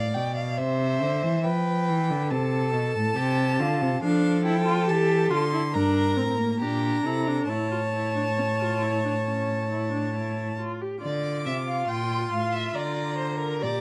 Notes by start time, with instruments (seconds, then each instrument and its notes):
Already playing: cello A2, violin D5 F5
0.15 cello B2, violin G5
0.36 violin F5
0.58 cello C3, violin C5 E5
1.02 cello D3
1.23 cello E3
1.44 cello F3, violin B4 G5
1.88 cello E3
2.10 cello D3
2.30 cello C3, violin A4 A5
2.74 cello B2
2.95 cello A2
3.16 cello C3, violin G4
3.59 cello D3, violin F4
3.81 cello C3
4.03 cello F3, viola D4, violin A4 F5
4.45 viola E4, violin G5
4.66 viola F4
4.88 cello E3, viola G4, violin A5
5.31 cello D3, viola F4, violin C6
5.53 viola E4
5.74 cello G2, viola D4, violin A#4 A#5
6.17 cello A2, viola C4
6.39 viola A#3
6.60 cello A#2, viola D4, violin G4 A#5
7.05 cello C3, viola E4, violin A4
7.27 viola D4
7.48 cello A2, viola E4, violin C#5 A5
7.71 viola F4
7.93 viola E4
8.16 viola D4
8.38 viola C#4
8.61 viola F4
8.82 viola E4
9.05 viola D4
9.26 viola C#4
9.71 viola E4
9.92 viola D4
10.15 viola E4
10.60 viola F4
10.82 viola G4
11.02 cello D3, viola F4, violin D5 D6
11.46 cello C3, violin E5
11.67 violin F5
11.88 cello A#2, violin G5 C6
12.32 cello A2, violin F5
12.52 violin E5
12.75 cello D3, violin D5 A#5
13.18 violin C5
13.40 violin A#4
13.62 cello A#2, viola G4, violin D5 A#5